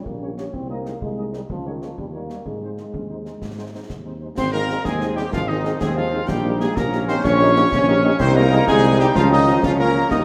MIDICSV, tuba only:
0, 0, Header, 1, 2, 480
1, 0, Start_track
1, 0, Key_signature, -4, "major"
1, 0, Tempo, 319149
1, 809, Time_signature, 6, 3, 24, 8
1, 15408, End_track
2, 0, Start_track
2, 0, Title_t, "Tuba"
2, 0, Program_c, 0, 58
2, 96, Note_on_c, 0, 34, 58
2, 693, Note_off_c, 0, 34, 0
2, 810, Note_on_c, 0, 36, 58
2, 1411, Note_off_c, 0, 36, 0
2, 1527, Note_on_c, 0, 36, 51
2, 2130, Note_off_c, 0, 36, 0
2, 2247, Note_on_c, 0, 37, 58
2, 2851, Note_off_c, 0, 37, 0
2, 2979, Note_on_c, 0, 39, 48
2, 3578, Note_off_c, 0, 39, 0
2, 3695, Note_on_c, 0, 44, 49
2, 4296, Note_off_c, 0, 44, 0
2, 4415, Note_on_c, 0, 39, 39
2, 4959, Note_off_c, 0, 39, 0
2, 5139, Note_on_c, 0, 44, 43
2, 5739, Note_off_c, 0, 44, 0
2, 5862, Note_on_c, 0, 39, 56
2, 6460, Note_off_c, 0, 39, 0
2, 6578, Note_on_c, 0, 32, 94
2, 7178, Note_off_c, 0, 32, 0
2, 7291, Note_on_c, 0, 39, 83
2, 7894, Note_off_c, 0, 39, 0
2, 8016, Note_on_c, 0, 32, 91
2, 8616, Note_off_c, 0, 32, 0
2, 8735, Note_on_c, 0, 39, 86
2, 9335, Note_off_c, 0, 39, 0
2, 9458, Note_on_c, 0, 34, 99
2, 10056, Note_off_c, 0, 34, 0
2, 10177, Note_on_c, 0, 34, 91
2, 10775, Note_off_c, 0, 34, 0
2, 10893, Note_on_c, 0, 34, 119
2, 11492, Note_off_c, 0, 34, 0
2, 11604, Note_on_c, 0, 34, 114
2, 12207, Note_off_c, 0, 34, 0
2, 12330, Note_on_c, 0, 36, 127
2, 12930, Note_off_c, 0, 36, 0
2, 13041, Note_on_c, 0, 36, 126
2, 13644, Note_off_c, 0, 36, 0
2, 13764, Note_on_c, 0, 37, 127
2, 14365, Note_off_c, 0, 37, 0
2, 14482, Note_on_c, 0, 37, 108
2, 15084, Note_off_c, 0, 37, 0
2, 15199, Note_on_c, 0, 39, 98
2, 15408, Note_off_c, 0, 39, 0
2, 15408, End_track
0, 0, End_of_file